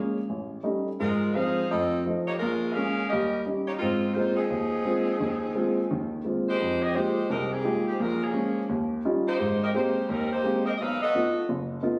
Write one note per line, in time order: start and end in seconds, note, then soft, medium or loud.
0.00 0.17 G#3 soft
0.00 0.17 A#3 soft
0.00 0.17 C#4 medium
0.29 0.59 A1 medium
0.63 0.87 G3 soft
0.63 0.88 A3 soft
0.63 0.88 C#4 soft
0.63 0.87 D#4 soft
1.00 1.30 G#2 medium
1.00 1.32 G#3 medium
1.00 1.33 D#4 medium
1.00 1.33 F4 medium
1.00 1.32 A#4 medium
1.35 1.59 F3 soft
1.35 1.59 G#3 soft
1.35 1.59 C4 soft
1.35 1.70 D#4 medium
1.35 1.70 G#4 medium
1.35 1.70 C5 medium
1.35 1.70 F5 loud
1.71 2.01 F2 medium
1.71 2.01 A3 medium
1.71 2.03 C4 medium
1.71 2.03 F4 medium
1.71 2.03 A4 medium
1.71 2.03 D#5 loud
2.06 2.29 F3 soft
2.06 2.29 A3 soft
2.06 2.29 D#4 soft
2.26 2.32 A#3 medium
2.26 2.33 D#4 medium
2.26 2.33 G4 medium
2.26 2.33 C#5 medium
2.39 2.71 A#1 medium
2.39 2.72 G#3 medium
2.39 2.72 C#4 medium
2.39 2.72 F4 medium
2.39 2.72 A#4 medium
2.73 2.99 G#3 soft
2.73 2.99 A#3 soft
2.73 3.08 C#4 medium
2.73 2.99 C#4 soft
2.73 3.10 G#4 medium
2.73 3.09 A#4 medium
2.73 3.09 F5 medium
3.09 3.42 D#2 medium
3.09 3.42 G3 medium
3.09 3.42 C#4 medium
3.09 3.42 G4 medium
3.09 3.43 A#4 medium
3.09 3.42 D#5 medium
3.46 3.69 G3 soft
3.46 3.69 C#4 soft
3.46 3.69 D#4 soft
3.66 3.73 A#3 medium
3.66 3.72 D#4 medium
3.66 3.72 G4 medium
3.66 3.73 C#5 medium
3.78 4.11 G#2 medium
3.78 4.12 A#3 medium
3.78 4.12 C4 medium
3.78 4.11 C4 medium
3.78 4.12 D#4 medium
3.78 4.12 F4 medium
4.14 4.39 G#3 soft
4.14 4.37 A#3 medium
4.14 4.39 A#3 soft
4.14 4.39 C4 soft
4.14 4.35 D#4 medium
4.14 4.37 F4 medium
4.14 4.39 F4 soft
4.14 4.37 C5 medium
4.36 6.21 F3 medium
4.36 6.21 C4 medium
4.36 6.21 D#4 medium
4.36 6.21 G#4 medium
4.50 4.80 D#2 medium
4.85 5.08 G#3 soft
4.85 5.09 A#3 soft
4.85 5.09 C4 soft
4.85 5.09 F4 soft
5.20 5.51 D#2 medium
5.20 5.50 D#3 medium
5.55 5.79 G#3 soft
5.55 5.79 A#3 soft
5.55 5.79 C4 soft
5.55 5.79 F4 soft
5.91 6.21 D#2 medium
5.91 6.21 D#3 medium
6.25 6.48 G#3 soft
6.25 6.49 A#3 soft
6.25 6.49 C4 soft
6.25 6.49 F4 soft
6.49 6.81 G#3 medium
6.49 6.81 D#4 medium
6.49 6.81 G4 medium
6.49 6.81 C5 loud
6.60 6.90 F2 medium
6.82 6.95 C4 medium
6.82 6.94 G4 medium
6.82 6.95 G#4 medium
6.82 6.95 D#5 loud
6.95 7.28 G#3 medium
6.95 7.19 G#3 soft
6.95 7.19 A#3 soft
6.95 7.29 D#4 medium
6.95 7.19 D#4 soft
6.95 7.19 F4 soft
6.95 7.28 G4 medium
6.95 7.19 G4 medium
6.95 7.30 C5 medium
7.29 7.60 C2 medium
7.29 7.60 C3 medium
7.29 7.50 G#3 medium
7.29 7.51 D#4 medium
7.29 7.50 G4 medium
7.29 7.51 A#4 medium
7.53 7.87 D#3 medium
7.53 7.86 C4 medium
7.53 7.86 G4 medium
7.53 7.88 G#4 medium
7.64 7.88 G#3 soft
7.64 7.88 A#3 soft
7.64 7.88 D#4 soft
7.64 7.88 F4 soft
7.64 7.89 G4 medium
7.87 8.00 D#3 medium
7.87 7.99 G#3 medium
7.87 8.00 C4 medium
7.87 7.99 G4 medium
8.00 8.30 A#1 medium
8.00 8.23 G#3 medium
8.00 8.22 C#4 medium
8.00 8.23 F4 medium
8.00 8.23 A#4 loud
8.24 8.71 F3 medium
8.24 8.71 A#3 medium
8.24 8.71 C#4 medium
8.24 8.71 G#4 medium
8.33 8.58 G#3 medium
8.33 8.58 A#3 soft
8.33 8.58 C#4 medium
8.69 9.00 D#2 medium
9.05 9.28 G3 medium
9.05 9.28 C#4 soft
9.05 9.29 D#4 soft
9.05 9.29 F4 medium
9.27 9.60 A#3 medium
9.27 9.60 D#4 medium
9.27 9.60 G4 medium
9.27 9.60 C5 medium
9.40 9.70 G#2 medium
9.64 9.69 C4 medium
9.64 9.69 G4 medium
9.64 9.69 A#4 medium
9.64 9.69 D#5 medium
9.74 9.98 G#3 soft
9.74 9.98 A#3 soft
9.74 10.08 A#3 medium
9.74 9.98 C4 soft
9.74 10.08 D#4 medium
9.74 9.98 G4 medium
9.74 10.08 G4 medium
9.74 10.08 C5 medium
10.09 10.40 D#2 medium
10.09 10.32 G3 medium
10.09 10.32 C4 medium
10.09 10.31 D#4 medium
10.09 10.32 A#4 medium
10.33 10.65 A#3 medium
10.33 10.65 D#4 medium
10.33 10.65 G4 medium
10.33 10.65 C5 medium
10.44 10.67 G#3 soft
10.44 10.68 A#3 soft
10.44 10.68 C4 soft
10.44 10.68 G4 medium
10.66 10.71 C4 medium
10.66 10.71 G4 medium
10.66 10.71 A#4 medium
10.66 10.71 D#5 medium
10.76 11.10 B1 medium
10.76 10.80 D#5 medium
10.76 11.02 F5 loud
10.81 11.02 D#4 medium
10.81 11.02 A4 loud
10.81 11.02 B4 medium
11.02 11.47 B3 medium
11.02 11.47 F#4 medium
11.02 11.47 A4 medium
11.02 11.47 D#5 loud
11.15 11.38 A3 soft
11.15 11.38 B3 soft
11.15 11.38 D#4 soft
11.15 11.38 F4 medium
11.49 11.79 F#1 medium
11.83 11.99 A3 soft
11.83 11.99 B3 soft
11.83 11.99 D#4 soft
11.83 11.99 F4 medium